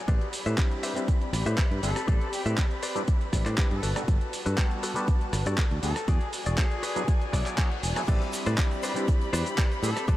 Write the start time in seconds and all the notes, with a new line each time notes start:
0.08 A1 C4 G4 B4 C5 D5 B5, kick, closed hi-hat, shaker
0.21 closed hi-hat
0.33 open hi-hat, shaker
0.46 A2 G4 B4 C5 E5, closed hi-hat, shaker
0.57 G3 C4 D4 E4 B5, kick, clap, closed hi-hat, shaker
0.71 closed hi-hat
0.83 G4 B4 C5 E5, open hi-hat, shaker
0.95 G3 C4 D4 E4, closed hi-hat, shaker
1.08 kick, closed hi-hat, shaker
1.21 closed hi-hat
1.33 A1, muted clean electric guitar stroke, cross-stick, open hi-hat, shaker
1.46 A2 G4 B4 C5 E5, closed hi-hat, shaker
1.58 G3 C4 D4 E4 B4, kick, clap, closed hi-hat, shaker
1.71 G2, closed hi-hat
1.83 G1 G3 C4 D4 E4 A4 B4, open hi-hat, shaker
1.96 cross-stick, closed hi-hat, shaker
2.08 A1 G4 A4 B4 C5 D5, kick, closed hi-hat, shaker
2.21 closed hi-hat
2.33 G4, open hi-hat, shaker
2.46 A2 G4 B4 C5 E5, closed hi-hat, shaker
2.58 G3 C4 D4 E4 B4, kick, clap, closed hi-hat, shaker
2.71 closed hi-hat
2.82 G4 B4 C5 D5, open hi-hat, shaker
2.95 G3 C4 D4 E4 B4, closed hi-hat, shaker
3.08 kick, closed hi-hat, shaker
3.21 closed hi-hat
3.33 A1 G3 C4 D4 E4 B4, muted clean electric guitar stroke, kick, cross-stick, open hi-hat, shaker
3.46 A2 G4 B4 C5 D5, clap, closed hi-hat, shaker
3.57 G3 C4 D4 E4 B4 G5, kick, clap, closed hi-hat, shaker
3.71 G2 A4, closed hi-hat
3.82 G1 F#4 A4 B4 D5 A5, open hi-hat, shaker
3.96 G3 B3 D4 F#4 A4, cross-stick, closed hi-hat, shaker
4.08 G1, kick, closed hi-hat, shaker
4.21 closed hi-hat
4.33 open hi-hat, shaker
4.46 G2 F#4 A4 B4, closed hi-hat, shaker
4.57 G3 B3 D4 F#4 A4, kick, clap, closed hi-hat, shaker
4.71 closed hi-hat
4.83 F#4 A4 B4, open hi-hat, shaker
4.95 G3 B3 D4 F#4 B4, closed hi-hat, shaker
5.08 kick, closed hi-hat, shaker
5.21 closed hi-hat, shaker
5.33 G1, muted clean electric guitar stroke, cross-stick, open hi-hat, shaker
5.46 G2 F#4 A4 D5, closed hi-hat, shaker
5.57 G3 B3 D4 F#4 A4, kick, clap, closed hi-hat, shaker
5.71 D2, closed hi-hat
5.83 D2 G3 B3 D4 F#4 A4, open hi-hat, shaker
5.96 cross-stick, closed hi-hat, shaker
6.08 E2 F#4 G#4 D5 G#5, kick, closed hi-hat, shaker
6.21 closed hi-hat, shaker
6.33 open hi-hat, shaker
6.46 E1 F#4 G#4 D5, closed hi-hat, shaker
6.58 F#3 B3 D4 E4 G#4, kick, clap, closed hi-hat, shaker
6.71 closed hi-hat
6.83 F#4 G#4 B4, open hi-hat, shaker
6.96 F#3 B3 D4 E4 G#4, closed hi-hat, shaker
7.08 kick, closed hi-hat, reverse cymbal, shaker
7.21 closed hi-hat, shaker
7.33 B1 F#3 B3 D4 E4 G#4 D5, muted clean electric guitar stroke, kick, cross-stick, open hi-hat, shaker
7.46 F#4 G#4 D5, clap, closed hi-hat, shaker
7.57 F#3 B3 D4 E4 G#4 F#5, kick, clap, closed hi-hat, shaker
7.71 closed hi-hat, shaker
7.83 E1 G#5, open hi-hat, shaker
7.96 F#3 B3 D4 E4 G#4, cross-stick, closed hi-hat, shaker
8.08 A1 G3 C4 D4 E4 G4 B4 C5 D5 B5, kick, closed hi-hat, crash, shaker
8.21 closed hi-hat, shaker
8.33 muted clean electric guitar stroke, open hi-hat, shaker
8.46 A2 G4 B4 C5 D5, closed hi-hat, shaker
8.58 G3 C4 D4 E4 B5, kick, clap, closed hi-hat, shaker
8.71 muted clean electric guitar stroke, closed hi-hat, shaker
8.83 G4 B4 C5 D5, open hi-hat, shaker
8.95 G3 C4 D4 E4, closed hi-hat, shaker
9.08 kick, closed hi-hat, shaker
9.21 closed hi-hat, shaker
9.33 E2 G4 B4 C5 D5, cross-stick, open hi-hat, shaker
9.46 closed hi-hat, shaker
9.57 G3 C4 D4 E4 G4 B4 C5 D5, kick, clap, closed hi-hat, shaker
9.71 closed hi-hat, shaker
9.83 A2 G3 C4 D4 E4 A4 B4, muted clean electric guitar stroke, open hi-hat, shaker
9.96 muted clean electric guitar stroke, cross-stick, closed hi-hat, shaker
10.08 A1 G4 A4 B4 C5 D5 E5, kick, closed hi-hat, shaker